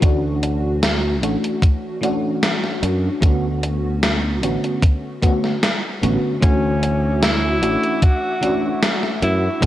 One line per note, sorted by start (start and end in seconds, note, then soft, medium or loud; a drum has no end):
0.00 1.22 D2 medium
0.00 1.17 E3 medium
0.00 1.17 A3 medium
0.00 1.18 C#4 medium
0.00 1.18 D4 medium
0.00 1.18 F#4 loud
0.00 kick loud
0.00 closed hi-hat medium
0.43 closed hi-hat medium
0.83 snare loud
0.83 closed hi-hat medium
1.22 1.35 A1 medium
1.22 1.98 E3 medium
1.22 1.98 A3 medium
1.22 1.98 C#4 medium
1.22 1.98 D4 medium
1.22 1.98 F#4 medium
1.22 closed hi-hat medium
1.44 closed hi-hat soft
1.62 kick loud
1.62 closed hi-hat medium
2.01 3.17 E3 loud
2.01 3.17 A3 medium
2.01 3.18 C#4 medium
2.01 3.18 D4 medium
2.01 3.19 F#4 loud
2.01 closed hi-hat medium
2.43 snare loud
2.43 closed hi-hat medium
2.64 snare soft
2.83 3.08 F#2 medium
2.83 closed hi-hat medium
3.21 4.43 D2 medium
3.21 4.37 D3 loud
3.21 4.37 A3 medium
3.21 4.38 B3 medium
3.21 4.38 C#4 medium
3.21 4.38 F#4 loud
3.21 kick loud
3.21 closed hi-hat medium
3.63 closed hi-hat medium
4.03 snare loud
4.03 closed hi-hat medium
4.42 4.56 A1 medium
4.42 5.18 D3 medium
4.42 5.18 A3 medium
4.42 5.18 B3 medium
4.42 5.18 C#4 medium
4.42 5.19 F#4 medium
4.42 closed hi-hat medium
4.64 closed hi-hat soft
4.82 kick loud
4.82 closed hi-hat medium
5.22 5.53 D3 loud
5.22 5.53 A3 medium
5.22 5.53 B3 medium
5.22 5.53 C#4 medium
5.22 5.54 F#4 loud
5.22 kick medium
5.22 closed hi-hat medium
5.44 snare soft
5.63 snare loud
5.63 closed hi-hat medium
6.02 6.16 A1 medium
6.02 6.37 D3 medium
6.02 6.38 A3 medium
6.02 6.38 B3 medium
6.02 6.38 C#4 medium
6.02 6.38 F#4 medium
6.02 closed hi-hat medium
6.40 7.63 D2 loud
6.40 7.58 D3 medium
6.40 7.57 E3 loud
6.40 7.57 A3 medium
6.40 7.57 C#4 medium
6.40 7.19 C#4 medium
6.40 9.59 F#4 medium
6.40 7.58 F#4 loud
6.40 9.59 E5 medium
6.40 9.59 C#6 medium
6.40 9.59 D6 medium
6.40 kick loud
6.40 closed hi-hat medium
6.83 closed hi-hat medium
7.22 8.04 E4 loud
7.22 snare loud
7.22 closed hi-hat medium
7.61 7.75 A1 medium
7.61 8.37 E3 medium
7.61 8.37 A3 medium
7.61 8.38 C#4 medium
7.61 8.38 D4 medium
7.61 8.38 F#4 medium
7.61 closed hi-hat medium
7.83 closed hi-hat soft
8.02 8.83 F#4 loud
8.02 kick loud
8.02 closed hi-hat medium
8.41 9.57 E3 medium
8.41 9.57 A3 medium
8.41 9.58 C#4 medium
8.41 9.58 D4 medium
8.41 9.58 F#4 loud
8.41 closed hi-hat medium
8.83 snare loud
8.83 closed hi-hat medium
9.03 snare soft
9.22 9.47 F#2 medium
9.22 9.64 E4 loud
9.22 closed hi-hat medium
9.60 9.66 D2 loud
9.60 9.66 D3 medium
9.60 9.66 A3 medium
9.60 9.66 B3 medium
9.60 9.66 C#4 medium
9.60 9.66 C#4 loud
9.60 9.66 A4 medium
9.60 kick loud
9.60 closed hi-hat medium